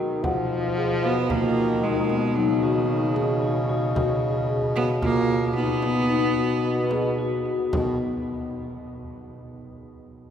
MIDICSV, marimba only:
0, 0, Header, 1, 2, 480
1, 0, Start_track
1, 0, Tempo, 533808
1, 211, Time_signature, 7, 2, 24, 8
1, 9264, End_track
2, 0, Start_track
2, 0, Title_t, "Marimba"
2, 0, Program_c, 0, 12
2, 0, Note_on_c, 0, 66, 69
2, 187, Note_off_c, 0, 66, 0
2, 215, Note_on_c, 0, 78, 89
2, 637, Note_off_c, 0, 78, 0
2, 695, Note_on_c, 0, 68, 78
2, 904, Note_off_c, 0, 68, 0
2, 927, Note_on_c, 0, 66, 77
2, 1139, Note_off_c, 0, 66, 0
2, 1168, Note_on_c, 0, 65, 80
2, 1590, Note_off_c, 0, 65, 0
2, 1647, Note_on_c, 0, 63, 74
2, 1856, Note_off_c, 0, 63, 0
2, 1886, Note_on_c, 0, 59, 77
2, 2095, Note_off_c, 0, 59, 0
2, 2121, Note_on_c, 0, 63, 86
2, 2333, Note_off_c, 0, 63, 0
2, 2362, Note_on_c, 0, 66, 76
2, 2785, Note_off_c, 0, 66, 0
2, 2840, Note_on_c, 0, 68, 75
2, 3052, Note_off_c, 0, 68, 0
2, 3078, Note_on_c, 0, 66, 74
2, 3291, Note_off_c, 0, 66, 0
2, 3319, Note_on_c, 0, 66, 80
2, 3531, Note_off_c, 0, 66, 0
2, 3556, Note_on_c, 0, 66, 93
2, 3981, Note_off_c, 0, 66, 0
2, 4036, Note_on_c, 0, 68, 81
2, 4248, Note_off_c, 0, 68, 0
2, 4270, Note_on_c, 0, 66, 76
2, 4485, Note_off_c, 0, 66, 0
2, 4516, Note_on_c, 0, 65, 85
2, 4941, Note_off_c, 0, 65, 0
2, 5000, Note_on_c, 0, 63, 70
2, 5211, Note_off_c, 0, 63, 0
2, 5239, Note_on_c, 0, 59, 80
2, 5452, Note_off_c, 0, 59, 0
2, 5482, Note_on_c, 0, 63, 87
2, 5696, Note_off_c, 0, 63, 0
2, 5725, Note_on_c, 0, 66, 72
2, 6158, Note_off_c, 0, 66, 0
2, 6213, Note_on_c, 0, 68, 72
2, 6432, Note_off_c, 0, 68, 0
2, 6460, Note_on_c, 0, 66, 76
2, 6678, Note_off_c, 0, 66, 0
2, 6706, Note_on_c, 0, 66, 83
2, 6922, Note_off_c, 0, 66, 0
2, 6950, Note_on_c, 0, 59, 72
2, 7174, Note_off_c, 0, 59, 0
2, 9264, End_track
0, 0, End_of_file